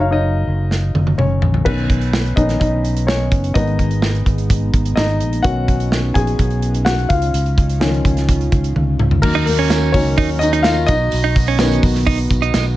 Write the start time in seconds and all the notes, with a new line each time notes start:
Already playing: F#1 F#3
0.00 D#4 C#5 F5
0.11 D#4 C#5 D#5
0.47 F#1
0.71 snare
0.94 F#1, high tom
1.07 high tom
1.18 F#1 C#4 C#5, mid tom
1.42 A#1, floor tom
1.54 floor tom
1.65 B1 D#3 B3 C#4 D#4 B4, kick, crash
1.78 closed hi-hat
1.90 kick, closed hi-hat
2.01 closed hi-hat
2.13 snare
2.26 closed hi-hat
2.36 A#1 D#3 B3 C#4 D#4 D#5, kick, closed hi-hat
2.49 snare, closed hi-hat
2.60 B1 D#4 D#5, kick, closed hi-hat
2.85 closed hi-hat
2.96 closed hi-hat
3.07 C#4 C#5, snare
3.32 F#1, kick, closed hi-hat
3.44 closed hi-hat
3.54 G#1 D#3 G#3 B3 D#4 D#5, kick, closed hi-hat
3.67 closed hi-hat
3.79 kick, closed hi-hat
3.91 closed hi-hat
4.02 snare
4.15 closed hi-hat
4.26 G#1, kick, closed hi-hat
4.38 closed hi-hat
4.50 kick, closed hi-hat
4.74 G#1, kick, closed hi-hat
4.85 closed hi-hat
4.96 G#1 D#4 D#5, snare
5.09 closed hi-hat
5.20 A#1, closed hi-hat
5.33 closed hi-hat
5.42 D#3 B3 C#4 F#4 F#5, kick, closed hi-hat
5.68 kick, closed hi-hat
5.80 closed hi-hat
5.92 snare
6.14 A#1 G#4 G#5, kick, closed hi-hat
6.27 closed hi-hat
6.39 B1, kick, closed hi-hat
6.50 closed hi-hat
6.62 closed hi-hat
6.74 closed hi-hat
6.85 F#4 F#5, snare
6.98 closed hi-hat
7.09 C#2 C#3 F4 F5, kick, closed hi-hat
7.22 closed hi-hat
7.34 C#2, closed hi-hat
7.46 closed hi-hat
7.58 kick, closed hi-hat
7.70 closed hi-hat
7.80 D#3 F3 C#4, snare
7.94 closed hi-hat
8.05 C#2, kick, closed hi-hat
8.17 snare, closed hi-hat
8.29 kick, closed hi-hat
8.41 closed hi-hat
8.52 C#2, kick, closed hi-hat
8.64 closed hi-hat
8.76 C#2, high tom
8.99 C#2, mid tom
9.11 floor tom
9.22 D#2 D#3 F#3 A#3 D#4 F#4 A#4, kick, crash, tambourine
9.35 D#4
9.46 A#3 A#4, hi-hat pedal, open hi-hat, tambourine
9.59 C#4
9.70 snare, hi-hat pedal, open hi-hat, tambourine
9.92 C#2 D#3 F#3 A#3 C#4 C#5, kick, hi-hat pedal, open hi-hat, tambourine
10.17 D#2 D#4, kick, hi-hat pedal, open hi-hat, tambourine
10.29 open hi-hat
10.39 D#4 D#5, hi-hat pedal, open hi-hat, tambourine
10.53 D#4, hi-hat pedal
10.63 F4 F5, snare, hi-hat pedal, open hi-hat, tambourine
10.76 tambourine
10.86 B1 B3 D#4 D#5, kick, hi-hat pedal, open hi-hat, tambourine
11.11 B1, hi-hat pedal, open hi-hat, tambourine
11.24 D#4
11.35 kick, hi-hat pedal, open hi-hat, tambourine
11.47 C#4, open hi-hat
11.59 D#3 F#3 B3, snare, hi-hat pedal, open hi-hat, tambourine
11.71 hi-hat pedal
11.83 B1, kick, hi-hat pedal, open hi-hat, tambourine
11.95 snare, tambourine
12.07 D#4, kick, hi-hat pedal, open hi-hat, tambourine
12.19 open hi-hat
12.30 B1, kick, hi-hat pedal, open hi-hat, tambourine
12.42 D#4, hi-hat pedal
12.54 B1, snare, hi-hat pedal, open hi-hat, tambourine
12.65 tambourine